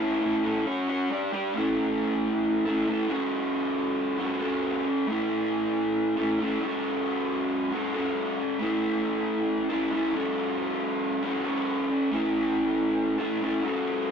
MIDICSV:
0, 0, Header, 1, 2, 480
1, 0, Start_track
1, 0, Key_signature, 3, "major"
1, 0, Tempo, 439883
1, 1682, Time_signature, 4, 2, 24, 8
1, 15399, End_track
2, 0, Start_track
2, 0, Title_t, "Overdriven electric guitar"
2, 0, Program_c, 0, 29
2, 0, Note_on_c, 0, 45, 85
2, 0, Note_on_c, 0, 52, 76
2, 0, Note_on_c, 0, 57, 89
2, 4, Note_on_c, 0, 61, 96
2, 10, Note_on_c, 0, 64, 96
2, 19, Note_on_c, 0, 69, 98
2, 215, Note_off_c, 0, 45, 0
2, 225, Note_off_c, 0, 52, 0
2, 228, Note_on_c, 0, 45, 82
2, 234, Note_off_c, 0, 57, 0
2, 238, Note_off_c, 0, 61, 0
2, 238, Note_on_c, 0, 52, 89
2, 245, Note_off_c, 0, 64, 0
2, 247, Note_on_c, 0, 57, 90
2, 251, Note_on_c, 0, 61, 91
2, 252, Note_off_c, 0, 69, 0
2, 258, Note_on_c, 0, 64, 99
2, 265, Note_on_c, 0, 69, 98
2, 449, Note_off_c, 0, 45, 0
2, 462, Note_on_c, 0, 45, 86
2, 467, Note_off_c, 0, 52, 0
2, 468, Note_off_c, 0, 57, 0
2, 479, Note_off_c, 0, 61, 0
2, 480, Note_on_c, 0, 52, 99
2, 481, Note_on_c, 0, 57, 105
2, 483, Note_off_c, 0, 64, 0
2, 491, Note_off_c, 0, 69, 0
2, 492, Note_on_c, 0, 61, 89
2, 496, Note_on_c, 0, 64, 90
2, 504, Note_on_c, 0, 69, 98
2, 696, Note_off_c, 0, 45, 0
2, 704, Note_off_c, 0, 52, 0
2, 705, Note_off_c, 0, 57, 0
2, 708, Note_off_c, 0, 61, 0
2, 713, Note_off_c, 0, 64, 0
2, 716, Note_on_c, 0, 54, 90
2, 717, Note_off_c, 0, 69, 0
2, 721, Note_on_c, 0, 61, 105
2, 732, Note_on_c, 0, 66, 107
2, 732, Note_on_c, 0, 73, 101
2, 950, Note_off_c, 0, 54, 0
2, 963, Note_on_c, 0, 54, 86
2, 965, Note_off_c, 0, 61, 0
2, 970, Note_off_c, 0, 66, 0
2, 973, Note_off_c, 0, 73, 0
2, 978, Note_on_c, 0, 61, 100
2, 983, Note_on_c, 0, 66, 97
2, 986, Note_on_c, 0, 73, 100
2, 1187, Note_off_c, 0, 54, 0
2, 1195, Note_off_c, 0, 61, 0
2, 1197, Note_off_c, 0, 66, 0
2, 1199, Note_off_c, 0, 73, 0
2, 1201, Note_on_c, 0, 55, 106
2, 1212, Note_on_c, 0, 62, 102
2, 1216, Note_on_c, 0, 67, 118
2, 1225, Note_on_c, 0, 74, 118
2, 1429, Note_off_c, 0, 55, 0
2, 1436, Note_off_c, 0, 62, 0
2, 1442, Note_on_c, 0, 55, 96
2, 1443, Note_off_c, 0, 67, 0
2, 1449, Note_off_c, 0, 74, 0
2, 1450, Note_on_c, 0, 62, 89
2, 1456, Note_on_c, 0, 67, 91
2, 1462, Note_on_c, 0, 74, 104
2, 1668, Note_off_c, 0, 55, 0
2, 1672, Note_off_c, 0, 62, 0
2, 1675, Note_off_c, 0, 67, 0
2, 1678, Note_off_c, 0, 74, 0
2, 1678, Note_on_c, 0, 57, 98
2, 1696, Note_on_c, 0, 61, 106
2, 1714, Note_on_c, 0, 64, 100
2, 1725, Note_on_c, 0, 69, 98
2, 2888, Note_off_c, 0, 64, 0
2, 2891, Note_off_c, 0, 69, 0
2, 2896, Note_on_c, 0, 69, 95
2, 2915, Note_on_c, 0, 64, 95
2, 2925, Note_off_c, 0, 61, 0
2, 2930, Note_on_c, 0, 61, 81
2, 2933, Note_off_c, 0, 57, 0
2, 2938, Note_on_c, 0, 57, 76
2, 3127, Note_off_c, 0, 64, 0
2, 3128, Note_off_c, 0, 57, 0
2, 3133, Note_on_c, 0, 57, 82
2, 3151, Note_off_c, 0, 61, 0
2, 3155, Note_on_c, 0, 61, 91
2, 3169, Note_on_c, 0, 64, 104
2, 3178, Note_off_c, 0, 69, 0
2, 3183, Note_on_c, 0, 69, 100
2, 3352, Note_off_c, 0, 57, 0
2, 3356, Note_on_c, 0, 54, 87
2, 3375, Note_off_c, 0, 64, 0
2, 3376, Note_off_c, 0, 61, 0
2, 3381, Note_on_c, 0, 61, 99
2, 3396, Note_on_c, 0, 66, 115
2, 3406, Note_off_c, 0, 69, 0
2, 3410, Note_on_c, 0, 69, 102
2, 4552, Note_off_c, 0, 54, 0
2, 4565, Note_on_c, 0, 54, 84
2, 4572, Note_off_c, 0, 66, 0
2, 4576, Note_off_c, 0, 61, 0
2, 4580, Note_on_c, 0, 61, 72
2, 4601, Note_on_c, 0, 66, 86
2, 4604, Note_off_c, 0, 69, 0
2, 4608, Note_on_c, 0, 69, 85
2, 4795, Note_off_c, 0, 54, 0
2, 4806, Note_off_c, 0, 69, 0
2, 4811, Note_on_c, 0, 69, 91
2, 4813, Note_off_c, 0, 66, 0
2, 4827, Note_on_c, 0, 66, 88
2, 4837, Note_off_c, 0, 61, 0
2, 4841, Note_on_c, 0, 61, 84
2, 4860, Note_on_c, 0, 54, 69
2, 5287, Note_off_c, 0, 66, 0
2, 5304, Note_off_c, 0, 54, 0
2, 5533, Note_on_c, 0, 57, 104
2, 5544, Note_off_c, 0, 61, 0
2, 5548, Note_on_c, 0, 61, 97
2, 5567, Note_on_c, 0, 64, 105
2, 5576, Note_off_c, 0, 69, 0
2, 5581, Note_on_c, 0, 69, 117
2, 6723, Note_off_c, 0, 69, 0
2, 6728, Note_on_c, 0, 69, 90
2, 6738, Note_off_c, 0, 64, 0
2, 6751, Note_on_c, 0, 64, 90
2, 6758, Note_off_c, 0, 61, 0
2, 6762, Note_on_c, 0, 61, 73
2, 6774, Note_off_c, 0, 57, 0
2, 6778, Note_on_c, 0, 57, 76
2, 6969, Note_off_c, 0, 57, 0
2, 6971, Note_off_c, 0, 64, 0
2, 6974, Note_on_c, 0, 57, 84
2, 6986, Note_off_c, 0, 61, 0
2, 6990, Note_on_c, 0, 61, 88
2, 7003, Note_on_c, 0, 64, 99
2, 7012, Note_off_c, 0, 69, 0
2, 7016, Note_on_c, 0, 69, 93
2, 7199, Note_off_c, 0, 57, 0
2, 7204, Note_on_c, 0, 54, 90
2, 7217, Note_off_c, 0, 64, 0
2, 7220, Note_off_c, 0, 61, 0
2, 7224, Note_on_c, 0, 61, 93
2, 7240, Note_on_c, 0, 66, 115
2, 7245, Note_off_c, 0, 69, 0
2, 7249, Note_on_c, 0, 69, 108
2, 8398, Note_off_c, 0, 54, 0
2, 8416, Note_off_c, 0, 66, 0
2, 8421, Note_on_c, 0, 54, 81
2, 8430, Note_off_c, 0, 61, 0
2, 8435, Note_on_c, 0, 61, 82
2, 8449, Note_on_c, 0, 66, 83
2, 8461, Note_off_c, 0, 69, 0
2, 8465, Note_on_c, 0, 69, 79
2, 8647, Note_off_c, 0, 54, 0
2, 8659, Note_off_c, 0, 69, 0
2, 8661, Note_off_c, 0, 66, 0
2, 8663, Note_on_c, 0, 69, 88
2, 8676, Note_on_c, 0, 66, 86
2, 8687, Note_off_c, 0, 61, 0
2, 8692, Note_on_c, 0, 61, 84
2, 8701, Note_on_c, 0, 54, 78
2, 9134, Note_off_c, 0, 66, 0
2, 9146, Note_off_c, 0, 54, 0
2, 9371, Note_on_c, 0, 57, 89
2, 9395, Note_off_c, 0, 61, 0
2, 9399, Note_on_c, 0, 61, 94
2, 9411, Note_on_c, 0, 64, 105
2, 9413, Note_off_c, 0, 69, 0
2, 9417, Note_on_c, 0, 69, 110
2, 10575, Note_off_c, 0, 69, 0
2, 10579, Note_off_c, 0, 64, 0
2, 10579, Note_on_c, 0, 69, 90
2, 10596, Note_on_c, 0, 64, 75
2, 10607, Note_off_c, 0, 61, 0
2, 10611, Note_on_c, 0, 61, 89
2, 10618, Note_off_c, 0, 57, 0
2, 10623, Note_on_c, 0, 57, 78
2, 10806, Note_off_c, 0, 57, 0
2, 10810, Note_on_c, 0, 57, 87
2, 10812, Note_off_c, 0, 64, 0
2, 10825, Note_off_c, 0, 61, 0
2, 10829, Note_on_c, 0, 61, 86
2, 10843, Note_on_c, 0, 64, 92
2, 10852, Note_off_c, 0, 69, 0
2, 10856, Note_on_c, 0, 69, 100
2, 11047, Note_off_c, 0, 57, 0
2, 11051, Note_on_c, 0, 54, 104
2, 11055, Note_off_c, 0, 64, 0
2, 11057, Note_off_c, 0, 61, 0
2, 11062, Note_on_c, 0, 61, 103
2, 11083, Note_on_c, 0, 66, 103
2, 11090, Note_off_c, 0, 69, 0
2, 11095, Note_on_c, 0, 69, 119
2, 12235, Note_off_c, 0, 54, 0
2, 12248, Note_on_c, 0, 54, 87
2, 12251, Note_off_c, 0, 66, 0
2, 12261, Note_off_c, 0, 61, 0
2, 12266, Note_on_c, 0, 61, 80
2, 12283, Note_on_c, 0, 66, 86
2, 12294, Note_off_c, 0, 69, 0
2, 12298, Note_on_c, 0, 69, 91
2, 12475, Note_off_c, 0, 54, 0
2, 12482, Note_off_c, 0, 69, 0
2, 12486, Note_on_c, 0, 69, 98
2, 12489, Note_off_c, 0, 66, 0
2, 12502, Note_on_c, 0, 66, 94
2, 12514, Note_off_c, 0, 61, 0
2, 12519, Note_on_c, 0, 61, 85
2, 12536, Note_on_c, 0, 54, 75
2, 12960, Note_off_c, 0, 66, 0
2, 12977, Note_off_c, 0, 54, 0
2, 13209, Note_on_c, 0, 57, 96
2, 13224, Note_off_c, 0, 61, 0
2, 13229, Note_on_c, 0, 61, 103
2, 13241, Note_on_c, 0, 64, 110
2, 13253, Note_off_c, 0, 69, 0
2, 13257, Note_on_c, 0, 69, 108
2, 14380, Note_off_c, 0, 69, 0
2, 14384, Note_on_c, 0, 69, 90
2, 14389, Note_off_c, 0, 64, 0
2, 14402, Note_on_c, 0, 64, 93
2, 14416, Note_off_c, 0, 61, 0
2, 14420, Note_on_c, 0, 61, 78
2, 14433, Note_off_c, 0, 57, 0
2, 14437, Note_on_c, 0, 57, 73
2, 14626, Note_off_c, 0, 64, 0
2, 14628, Note_off_c, 0, 57, 0
2, 14632, Note_on_c, 0, 57, 86
2, 14649, Note_off_c, 0, 61, 0
2, 14653, Note_on_c, 0, 61, 86
2, 14665, Note_on_c, 0, 64, 97
2, 14676, Note_off_c, 0, 69, 0
2, 14681, Note_on_c, 0, 69, 100
2, 14856, Note_off_c, 0, 57, 0
2, 14860, Note_on_c, 0, 54, 85
2, 14874, Note_off_c, 0, 61, 0
2, 14878, Note_off_c, 0, 64, 0
2, 14878, Note_on_c, 0, 61, 104
2, 14896, Note_on_c, 0, 66, 117
2, 14903, Note_off_c, 0, 69, 0
2, 14907, Note_on_c, 0, 69, 112
2, 15399, Note_off_c, 0, 54, 0
2, 15399, Note_off_c, 0, 61, 0
2, 15399, Note_off_c, 0, 66, 0
2, 15399, Note_off_c, 0, 69, 0
2, 15399, End_track
0, 0, End_of_file